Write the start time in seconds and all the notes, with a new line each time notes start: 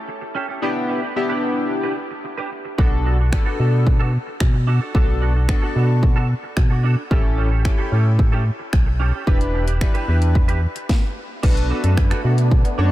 0.08 muted clean electric guitar stroke
0.21 muted clean electric guitar stroke
0.35 C#4 G4 A4
0.48 C#4 G4 A4
0.62 B3 D4 E4 G4 B4
0.75 muted clean electric guitar stroke
0.89 D4 G4 B4
1.02 D4 G4 B4
1.16 B3 D4 E4 G4, muted clean electric guitar stroke
1.29 D4 G4 B4
1.43 D4 G4 B4
1.56 muted clean electric guitar stroke
1.70 muted clean electric guitar stroke
1.83 D4 G4 B4
1.97 muted clean electric guitar stroke
2.11 muted clean electric guitar stroke
2.24 muted clean electric guitar stroke
2.37 D4 G4 B4
2.51 muted clean electric guitar stroke
2.65 muted clean electric guitar stroke
2.78 B1 B3 D4 F#4 A4, kick
2.92 muted clean electric guitar stroke
3.05 D4 F#4 A4
3.19 D4 F#4 A4
3.32 B3 D4 F#4 A4, finger snap, muted clean electric guitar stroke, kick
3.46 D4 F#4 A4
3.59 B2 D4 F#4 A4
3.73 muted clean electric guitar stroke
3.86 muted clean electric guitar stroke, kick
4.00 D4 F#4 A4
4.13 muted clean electric guitar stroke
4.27 muted clean electric guitar stroke
4.40 B2, finger snap, muted clean electric guitar stroke, kick
4.54 muted clean electric guitar stroke
4.67 D4 F#4 A4
4.81 D4 F#4 A4
4.94 B1 B3 D4 F#4 A4, kick
5.08 muted clean electric guitar stroke
5.21 D4 F#4 A4
5.35 D4 F#4 A4
5.49 B3 D4 F#4 A4, finger snap, kick
5.62 D4 F#4 A4
5.75 B2 D4 F#4 A4
5.89 muted clean electric guitar stroke
6.03 muted clean electric guitar stroke, kick
6.16 D4 F#4 A4
6.29 muted clean electric guitar stroke
6.43 muted clean electric guitar stroke
6.57 B2, finger snap, muted clean electric guitar stroke, kick
6.70 D4 F#4 A4
6.83 D4 F#4 A4
6.97 muted clean electric guitar stroke
7.10 A1 C#4 E4 G4 A4, kick
7.24 muted clean electric guitar stroke
7.37 C#4 G4 A4
7.51 C#4 G4 A4
7.65 C#4 E4 G4 A4, finger snap, kick
7.78 C#4 G4 A4
7.91 A2 C#4 G4 A4
8.05 muted clean electric guitar stroke
8.19 muted clean electric guitar stroke, kick
8.32 C#4 G4 A4
8.59 muted clean electric guitar stroke
8.73 B1, finger snap, muted clean electric guitar stroke, kick
8.86 muted clean electric guitar stroke
8.99 C#4 G4 A4
9.13 C#4 G4 A4
9.27 E1 D4 E4 G4 B4, kick
9.40 muted clean electric guitar stroke, closed hi-hat
9.54 D4 G4 B4
9.67 D4 G4 B4, closed hi-hat
9.81 D4 E4 G4 B4, finger snap, kick
9.94 D4 G4 B4, closed hi-hat
10.08 E2 D4 G4 B4
10.21 muted clean electric guitar stroke, closed hi-hat
10.35 muted clean electric guitar stroke, kick
10.48 D4 G4 B4, closed hi-hat
10.62 muted clean electric guitar stroke
10.75 muted clean electric guitar stroke, closed hi-hat
10.89 kick, snare
11.43 B1 A3 B3 D4 F#4 A4 B4, kick, crash
11.56 muted clean electric guitar stroke, closed hi-hat
11.70 D4 F#4 A4
11.83 F#2 D4 F#4 A4, closed hi-hat
11.97 finger snap, kick
12.10 D4 F#4 A4, finger snap, closed hi-hat
12.24 B2 D4 F#4 A4
12.38 muted clean electric guitar stroke, closed hi-hat
12.51 kick
12.65 muted clean electric guitar stroke, closed hi-hat
12.78 F#2 D4 F#4 A4 C#5